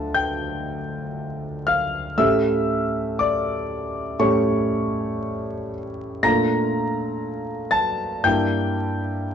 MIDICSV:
0, 0, Header, 1, 2, 480
1, 0, Start_track
1, 0, Tempo, 1025641
1, 1036, Time_signature, 4, 2, 24, 8
1, 1036, Tempo, 1006711
1, 3916, Tempo, 1127820
1, 4380, End_track
2, 0, Start_track
2, 0, Title_t, "Grand piano"
2, 0, Program_c, 0, 0
2, 0, Control_c, 0, 64, 127
2, 0, Note_on_c, 0, 38, 43
2, 0, Note_on_c, 0, 57, 33
2, 0, Note_on_c, 0, 62, 37
2, 0, Note_on_c, 0, 65, 34
2, 0, Note_on_c, 0, 77, 60
2, 0, Note_on_c, 0, 81, 62
2, 0, Note_on_c, 0, 89, 84
2, 0, Note_on_c, 0, 93, 84
2, 54, Note_off_c, 0, 81, 0
2, 68, Note_on_c, 0, 91, 81
2, 69, Note_off_c, 0, 93, 0
2, 71, Note_on_c, 0, 79, 64
2, 774, Note_off_c, 0, 79, 0
2, 780, Note_off_c, 0, 89, 0
2, 780, Note_on_c, 0, 89, 79
2, 787, Note_off_c, 0, 77, 0
2, 787, Note_on_c, 0, 77, 64
2, 791, Note_off_c, 0, 91, 0
2, 1010, Note_off_c, 0, 38, 0
2, 1012, Note_off_c, 0, 57, 0
2, 1014, Note_off_c, 0, 62, 0
2, 1015, Note_off_c, 0, 65, 0
2, 1015, Note_off_c, 0, 77, 0
2, 1019, Note_on_c, 0, 45, 49
2, 1019, Note_on_c, 0, 88, 81
2, 1021, Note_on_c, 0, 57, 41
2, 1024, Note_on_c, 0, 61, 41
2, 1025, Note_on_c, 0, 76, 62
2, 1027, Note_on_c, 0, 67, 40
2, 1028, Note_off_c, 0, 89, 0
2, 1044, Control_c, 0, 64, 0
2, 1108, Control_c, 0, 64, 127
2, 1492, Note_off_c, 0, 76, 0
2, 1503, Note_on_c, 0, 86, 72
2, 1508, Note_off_c, 0, 88, 0
2, 1508, Note_on_c, 0, 74, 63
2, 1961, Note_off_c, 0, 45, 0
2, 1962, Note_off_c, 0, 57, 0
2, 1964, Note_off_c, 0, 61, 0
2, 1965, Note_off_c, 0, 67, 0
2, 1965, Note_off_c, 0, 74, 0
2, 1980, Note_on_c, 0, 45, 50
2, 1981, Note_off_c, 0, 86, 0
2, 1981, Note_on_c, 0, 57, 48
2, 1981, Note_on_c, 0, 85, 78
2, 1985, Note_on_c, 0, 73, 56
2, 1986, Note_on_c, 0, 61, 39
2, 1990, Note_on_c, 0, 67, 41
2, 2695, Note_off_c, 0, 73, 0
2, 2712, Note_off_c, 0, 85, 0
2, 2936, Note_off_c, 0, 45, 0
2, 2937, Note_off_c, 0, 57, 0
2, 2939, Note_off_c, 0, 61, 0
2, 2941, Note_off_c, 0, 67, 0
2, 2951, Note_on_c, 0, 46, 58
2, 2951, Note_on_c, 0, 94, 93
2, 2952, Note_on_c, 0, 57, 45
2, 2956, Note_on_c, 0, 62, 43
2, 2956, Note_on_c, 0, 82, 75
2, 2960, Note_on_c, 0, 65, 45
2, 2968, Control_c, 0, 64, 0
2, 3037, Control_c, 0, 64, 127
2, 3647, Note_off_c, 0, 82, 0
2, 3655, Note_on_c, 0, 93, 92
2, 3660, Note_on_c, 0, 81, 79
2, 3663, Note_off_c, 0, 94, 0
2, 3892, Note_off_c, 0, 46, 0
2, 3893, Note_off_c, 0, 57, 0
2, 3895, Note_off_c, 0, 62, 0
2, 3895, Note_off_c, 0, 81, 0
2, 3897, Note_off_c, 0, 65, 0
2, 3907, Note_on_c, 0, 43, 52
2, 3909, Note_on_c, 0, 91, 97
2, 3910, Note_off_c, 0, 93, 0
2, 3911, Note_on_c, 0, 58, 45
2, 3912, Note_on_c, 0, 62, 45
2, 3914, Note_on_c, 0, 79, 74
2, 3918, Note_on_c, 0, 64, 45
2, 3922, Control_c, 0, 64, 0
2, 3995, Control_c, 0, 64, 127
2, 4378, Note_off_c, 0, 43, 0
2, 4379, Note_off_c, 0, 79, 0
2, 4380, Note_off_c, 0, 58, 0
2, 4380, Note_off_c, 0, 62, 0
2, 4380, Note_off_c, 0, 64, 0
2, 4380, Note_off_c, 0, 91, 0
2, 4380, End_track
0, 0, End_of_file